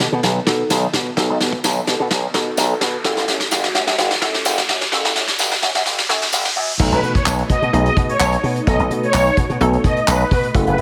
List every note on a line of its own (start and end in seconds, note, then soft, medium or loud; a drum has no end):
0.00 3.01 D#3 medium
0.00 3.01 B3 medium
0.00 3.01 A4 medium
0.00 snare medium
0.00 riser medium
0.12 0.19 B2 loud
0.23 0.39 B1 loud
0.23 snare medium
0.23 closed hi-hat medium
0.46 0.62 B2 loud
0.46 0.89 B3 medium
0.46 0.89 D#4 medium
0.46 0.89 F#4 medium
0.46 0.89 A4 loud
0.46 kick medium
0.46 snare medium
0.46 closed hi-hat medium
0.70 0.85 B1 loud
0.70 snare medium
0.70 closed hi-hat loud
0.70 tambourine medium
0.93 1.09 B2 loud
0.93 kick medium
0.93 snare medium
0.93 closed hi-hat medium
1.17 1.25 B1 loud
1.17 1.73 B3 medium
1.17 1.73 D#4 medium
1.17 1.73 F#4 medium
1.17 1.73 A4 loud
1.17 kick loud
1.17 snare medium
1.17 closed hi-hat medium
1.30 1.37 B1 loud
1.40 1.56 B2 loud
1.40 snare medium
1.40 closed hi-hat medium
1.53 kick medium
1.64 1.79 B1 medium
1.64 snare medium
1.64 closed hi-hat medium
1.64 tambourine medium
1.87 1.95 B2 medium
1.87 snare medium
1.87 closed hi-hat medium
2.00 2.07 B2 loud
2.11 2.26 B1 loud
2.11 kick loud
2.11 snare medium
2.11 closed hi-hat medium
2.34 2.49 B2 medium
2.34 2.76 B3 medium
2.34 2.76 D#4 medium
2.34 2.76 F#4 medium
2.34 2.76 A4 loud
2.34 kick loud
2.34 snare loud
2.34 closed hi-hat medium
2.57 2.73 B1 loud
2.57 snare loud
2.57 closed hi-hat loud
2.57 tambourine medium
2.81 2.96 B2 loud
2.81 snare loud
2.81 closed hi-hat medium
3.04 3.13 F#1 loud
3.04 6.76 E3 medium
3.04 6.76 A3 medium
3.04 3.61 C#4 medium
3.04 3.61 E4 medium
3.04 6.76 F#4 medium
3.04 3.61 F#4 medium
3.04 3.61 A4 loud
3.04 kick loud
3.04 snare medium
3.04 closed hi-hat medium
3.17 3.24 F#1 medium
3.17 snare medium
3.28 3.43 F#2 loud
3.28 snare loud
3.28 closed hi-hat medium
3.40 kick medium
3.40 snare loud
3.51 3.66 F#1 loud
3.51 snare loud
3.51 closed hi-hat medium
3.51 tambourine medium
3.64 snare loud
3.74 3.83 F#2 loud
3.74 snare loud
3.74 closed hi-hat medium
3.87 3.94 F#2 loud
3.87 snare loud
3.98 4.13 F#1 loud
3.98 snare loud
3.98 closed hi-hat medium
4.11 snare loud
4.21 4.37 F#2 loud
4.21 4.64 C#4 medium
4.21 4.64 E4 medium
4.21 4.64 F#4 medium
4.21 4.64 A4 loud
4.21 kick medium
4.21 snare loud
4.21 closed hi-hat medium
4.34 snare loud
4.45 4.60 F#1 loud
4.45 snare loud
4.45 closed hi-hat loud
4.45 tambourine medium
4.58 snare loud
4.69 4.84 F#2 loud
4.69 kick medium
4.69 snare loud
4.69 closed hi-hat medium
4.81 snare loud
4.92 5.00 F#1 loud
4.92 5.48 C#4 medium
4.92 5.48 E4 medium
4.92 5.48 F#4 medium
4.92 5.48 A4 loud
4.92 kick loud
4.92 snare loud
4.92 closed hi-hat medium
5.04 5.12 F#1 loud
5.04 snare loud
5.15 5.31 F#2 loud
5.15 snare loud
5.15 closed hi-hat medium
5.28 kick medium
5.28 snare loud
5.39 5.54 F#1 loud
5.39 snare loud
5.39 closed hi-hat loud
5.39 tambourine medium
5.51 snare loud
5.62 5.70 F#2 loud
5.62 snare loud
5.62 closed hi-hat medium
5.75 5.82 F#2 loud
5.75 snare loud
5.86 6.01 F#1 loud
5.86 kick loud
5.86 snare loud
5.86 closed hi-hat medium
5.98 snare loud
6.09 6.24 F#2 loud
6.09 6.51 C#4 medium
6.09 6.51 E4 medium
6.09 6.51 F#4 medium
6.09 6.51 A4 loud
6.09 snare loud
6.09 closed hi-hat medium
6.22 snare loud
6.33 6.48 F#1 loud
6.33 snare loud
6.33 closed hi-hat loud
6.33 tambourine medium
6.45 snare loud
6.56 6.71 F#2 loud
6.56 open hi-hat medium
6.79 6.88 B1 loud
6.79 10.51 B2 medium
6.79 7.36 A3 medium
6.79 10.81 A3 medium
6.79 7.36 B3 medium
6.79 7.36 D#4 medium
6.79 10.51 D#4 medium
6.79 7.36 F#4 medium
6.79 7.36 A4 medium
6.79 kick loud
6.79 crash loud
6.92 6.99 B1 medium
6.92 6.99 B4 medium
6.92 closed hi-hat medium
7.03 7.18 B2 loud
7.03 closed hi-hat medium
7.15 7.23 C#5 medium
7.15 kick medium
7.15 closed hi-hat medium
7.26 7.42 B1 loud
7.26 clap loud
7.26 closed hi-hat medium
7.26 tambourine medium
7.39 closed hi-hat medium
7.49 7.58 B2 loud
7.49 7.66 D#5 medium
7.49 kick medium
7.49 closed hi-hat medium
7.62 7.69 B2 loud
7.62 closed hi-hat soft
7.73 7.88 B1 loud
7.73 8.29 A3 medium
7.73 8.29 B3 medium
7.73 8.29 D#4 medium
7.73 8.29 F#4 medium
7.73 8.30 G#4 medium
7.73 closed hi-hat medium
7.86 7.93 D#5 medium
7.86 closed hi-hat medium
7.97 8.12 B2 loud
7.97 kick loud
7.97 closed hi-hat medium
8.09 8.25 C#5 medium
8.09 closed hi-hat medium
8.20 8.35 B1 loud
8.20 clap loud
8.20 closed hi-hat loud
8.20 tambourine medium
8.32 closed hi-hat medium
8.43 8.59 B2 loud
8.43 open hi-hat medium
8.56 closed hi-hat medium
8.67 8.75 B1 loud
8.67 9.23 A3 medium
8.67 9.23 B3 medium
8.67 9.23 D#4 medium
8.67 9.23 F#4 medium
8.67 9.23 A4 medium
8.67 8.75 D#5 loud
8.67 kick loud
8.67 closed hi-hat medium
8.79 8.87 B1 loud
8.79 closed hi-hat medium
8.90 9.06 B2 loud
8.90 closed hi-hat medium
9.03 9.36 C#5 medium
9.03 closed hi-hat medium
9.14 9.29 B1 loud
9.14 clap loud
9.14 closed hi-hat medium
9.14 tambourine medium
9.26 closed hi-hat medium
9.37 9.45 B2 loud
9.37 kick loud
9.37 closed hi-hat medium
9.50 9.57 B2 loud
9.50 closed hi-hat soft
9.61 9.76 B1 loud
9.61 10.17 A3 loud
9.61 10.17 B3 medium
9.61 10.17 D#4 medium
9.61 10.17 F#4 medium
9.61 10.17 A4 loud
9.61 closed hi-hat medium
9.73 closed hi-hat medium
9.84 9.99 B2 loud
9.84 10.00 D#5 loud
9.84 kick loud
9.84 closed hi-hat medium
9.97 closed hi-hat medium
10.08 10.23 B1 loud
10.08 10.16 B4 medium
10.08 clap loud
10.08 closed hi-hat loud
10.08 tambourine medium
10.20 closed hi-hat medium
10.31 10.46 B2 loud
10.31 10.40 B4 medium
10.31 kick loud
10.31 open hi-hat medium
10.43 closed hi-hat medium
10.54 10.63 F#1 loud
10.54 10.81 E3 medium
10.54 10.81 A3 medium
10.54 10.81 C#4 medium
10.54 10.81 E4 medium
10.54 10.81 F#4 medium
10.54 10.81 A4 medium
10.54 kick loud
10.54 closed hi-hat medium
10.67 10.74 F#1 medium
10.67 10.74 B4 medium
10.67 closed hi-hat medium
10.78 10.81 F#2 loud
10.78 closed hi-hat medium